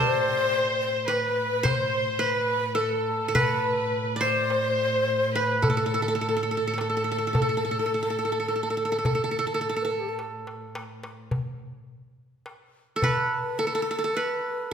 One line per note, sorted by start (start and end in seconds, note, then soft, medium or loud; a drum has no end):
0.00 11.44 A2 medium
0.00 0.69 G4 medium
0.00 0.69 A4 medium
0.00 0.76 C5 loud
0.00 1.09 C5 loud
0.00 1.14 C5 loud
0.00 0.86 D5 medium
0.81 1.10 C5 medium
1.08 1.69 B4 medium
1.08 1.65 B4 medium
1.08 1.67 B4 medium
1.08 darbuka tek medium
1.63 2.25 C5 medium
1.63 2.22 C5 medium
1.63 2.25 C5 medium
1.63 darbuka dum medium
2.19 3.30 B4 medium
2.19 2.34 C5 medium
2.23 2.81 B4 medium
2.34 2.79 B4 medium
2.75 3.28 A4 medium
2.75 3.31 A4 medium
2.80 3.36 A4 medium
3.28 4.46 A4 medium
3.34 4.20 B4 medium
3.34 4.27 B4 medium
3.34 3.91 B4 medium
3.34 darbuka dum medium
4.16 5.15 D5 medium
4.21 5.41 C5 medium
4.21 5.66 C5 medium
4.21 5.31 C5 medium
4.21 darbuka ka soft
4.50 darbuka tek medium
5.34 5.63 B4 medium
5.34 6.46 B4 medium
5.62 5.69 A4 medium
5.62 10.19 A4 medium
5.62 9.83 A4 medium
5.62 darbuka dum medium
5.70 5.77 A4 medium
5.77 5.86 A4 medium
5.86 5.94 A4 medium
5.94 6.02 A4 medium
6.02 6.08 A4 medium
6.08 6.15 A4 medium
6.15 6.21 A4 medium
6.21 6.28 A4 medium
6.21 darbuka ka soft
6.29 6.36 A4 soft
6.37 6.42 A4 medium
6.43 6.51 A4 soft
6.51 6.57 A4 medium
6.57 6.67 A4 soft
6.67 6.73 A4 medium
6.74 6.80 A4 soft
6.78 6.89 A4 medium
6.78 darbuka tek medium
6.90 6.96 A4 soft
6.97 7.04 A4 medium
7.04 7.11 A4 soft
7.12 7.18 A4 medium
7.18 7.27 A4 soft
7.27 7.33 A4 medium
7.33 7.41 A4 soft
7.33 darbuka dum medium
7.42 7.49 A4 medium
7.49 7.57 A4 soft
7.57 7.64 A4 soft
7.65 7.71 A4 soft
7.71 7.79 A4 medium
7.79 7.85 A4 soft
7.86 7.94 A4 soft
7.92 8.02 A4 soft
7.92 darbuka ka soft
8.03 8.10 A4 medium
8.10 8.18 A4 soft
8.19 8.24 A4 soft
8.25 8.32 A4 soft
8.32 8.39 A4 medium
8.40 8.48 A4 soft
8.48 8.55 A4 soft
8.56 8.63 A4 soft
8.63 8.70 A4 soft
8.70 8.77 A4 soft
8.77 8.85 A4 medium
8.85 8.91 A4 medium
8.92 8.98 A4 medium
8.99 9.05 A4 soft
9.05 9.14 A4 medium
9.05 darbuka dum medium
9.15 9.23 A4 soft
9.24 9.31 A4 medium
9.31 9.38 A4 medium
9.39 9.46 A4 medium
9.47 9.54 A4 medium
9.54 9.61 A4 medium
9.61 9.69 A4 medium
9.69 9.76 A4 medium
9.76 9.84 A4 medium
9.82 11.02 A4 medium
9.82 9.93 B4 medium
9.91 10.01 A4 medium
9.91 darbuka ka soft
9.99 10.11 G4 medium
10.09 10.18 A4 medium
10.19 darbuka tek soft
10.47 darbuka ka medium
10.75 darbuka tek medium
11.04 darbuka ka medium
11.31 darbuka dum medium
12.46 darbuka tek medium
12.96 13.58 A4 medium
13.01 13.60 B4 medium
13.01 14.14 B4 medium
13.01 darbuka dum medium
13.58 14.17 A4 medium
13.58 13.66 A4 medium
13.67 13.74 A4 medium
13.75 13.82 A4 medium
13.82 13.90 A4 medium
13.91 13.98 A4 medium
13.99 14.04 A4 medium
14.04 14.71 A4 medium
14.15 14.73 B4 medium